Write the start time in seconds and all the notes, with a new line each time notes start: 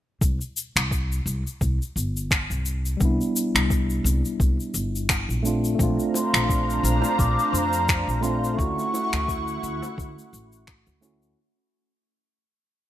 0.21 C2, kick, shaker
0.41 shaker
0.57 shaker
0.76 C2, finger snap, shaker
0.91 kick, shaker
1.12 shaker
1.26 C2, shaker
1.47 shaker
1.61 C2, kick, shaker
1.82 shaker
1.96 G1, shaker
2.17 shaker
2.31 finger snap, kick, shaker
2.50 C2, shaker
2.66 shaker
2.85 shaker
2.97 C2 G3 B3, kick, shaker
3.02 D4 E4
3.21 shaker
3.36 shaker
3.55 C2, finger snap, shaker
3.70 kick, shaker
3.90 shaker
4.04 C2, shaker
4.25 shaker
4.40 C2, kick, shaker
4.60 shaker
4.74 G1, shaker
4.95 shaker
5.09 finger snap, kick, shaker
5.29 A#1, shaker
5.43 A3 C4 D4, shaker
5.47 F4
5.64 shaker
5.75 A3 C4
5.79 A#1 D4 F4 C5 F5 A#5, kick, shaker
5.99 shaker
6.14 C6, high bongo, shaker
6.34 A#1, finger snap, shaker
6.49 kick, shaker
6.70 shaker
6.83 A#1 A#5, shaker
7.02 high bongo, shaker
7.19 A#1 D6, kick, shaker
7.39 shaker
7.53 F2 C6, shaker
7.58 A#5
7.73 shaker
7.89 finger snap, kick, shaker
8.07 A#1, shaker
8.21 A3 C4 D4 F4 C6, high bongo, shaker
8.44 shaker
8.54 A3 C#4 C#6
8.58 D2 E4 F#4 F#5 C#6, kick, shaker
8.79 shaker
8.94 high bongo, shaker
9.13 D2, finger snap, shaker
9.28 kick, shaker
9.48 shaker
9.63 D2, shaker
9.82 high bongo, shaker
9.98 D2, kick, shaker
10.19 shaker
10.33 A1, shaker
10.52 shaker
10.67 finger snap, kick, shaker
10.87 D2, shaker
11.01 A3 C#4 E4, high bongo, shaker
11.05 F#4
11.22 shaker